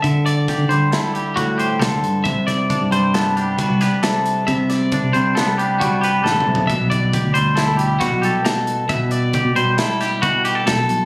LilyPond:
<<
  \new Staff \with { instrumentName = "Clean electric guitar" } { \time 5/4 \key g \major \tempo 4 = 136 e''8 d''4 c''8 a'8 g'8 fis'8 g'8 a'4 | e''8 d''4 c''8 a'8 g'8 fis'8 g'8 a'4 | e''8 d''4 c''8 a'8 g'8 fis'8 g'8 a'4 | e''8 d''4 c''8 a'8 g'8 fis'8 g'8 a'4 |
e''8 d''4 c''8 a'8 g'8 fis'8 g'8 a'4 | }
  \new Staff \with { instrumentName = "Clean electric guitar" } { \clef bass \time 5/4 \key g \major << { r4 g'4 e'8 g'4 c''4. | r4 d'4 b8 d'4 b'4. | r4 d'4 b8 d'4 b'4. | r4 g'4 e'8 g'4 a'4. |
r4 g'4 e'8 g'4 g'16 a'4~ a'16 | } \\ { <d g>4. g4. a,4 d4 | c4. g4. g4 c4 | c4. g4. g4 d8 c8 | b,4. g4. b,4 b,4 |
b,4. g4. b,4 b,4 | } >> }
  \new Staff \with { instrumentName = "Fingered electric bass" } { \clef bass \time 5/4 \key g \major d4~ d16 d16 d8 r2 c,16 d,16 g,8 | c,4~ c,16 g,16 g,4.~ g,16 c,8 r4 r16 | c4~ c16 c16 c8 r2 a,,8 b,,8 | b,,4~ b,,16 d,16 d,4.~ d,16 b,,8 r4 r16 |
b,4~ b,16 b,16 b,8 r2 e,,16 b,,16 b,,8 | }
  \new DrumStaff \with { instrumentName = "Drums" } \drummode { \time 5/4 <hh bd>8 hh8 <hh bd sn>8 hh8 <hh sn>8 hh8 <hh bd>8 hh8 <hh sn>8 hh8 | <hh bd>8 <hh bd sn>8 <hh bd>8 hh8 <hh sn>8 hh8 <hh bd>8 <hh sn>8 <hh sn>8 hh8 | <hh bd>8 <hh sn>8 <hh bd>8 hh8 <hh sn>8 hh8 <hh bd>8 hh8 \tuplet 3/2 { sn8 toml8 tomfh8 } | <hh bd>8 <hh bd>8 <hh bd>8 hh8 <hh sn>8 hh8 <hh bd sn>8 hh8 <hh sn>8 hh8 |
<hh bd>8 hh8 <hh bd>8 hh8 <hh sn>8 <hh sn>8 <hh bd>8 hh8 <hh sn>8 hh8 | }
>>